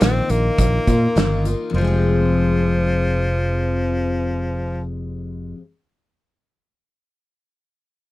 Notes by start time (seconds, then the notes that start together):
0.01 A#1 D#3 A#3 C4 D#4 F4, snare, closed hi-hat
0.30 A#1 A#3, closed hi-hat
0.58 A#1, kick, closed hi-hat
0.87 A#2 A#3 D#4 F4, kick, closed hi-hat
1.15 G1 D#3 A#3 D#4 F4, snare, closed hi-hat
1.45 A#3 D#4 F4, closed hi-hat
1.70 F2
1.74 F1 C3 F3
1.78 F3 G#3
1.84 C4 G4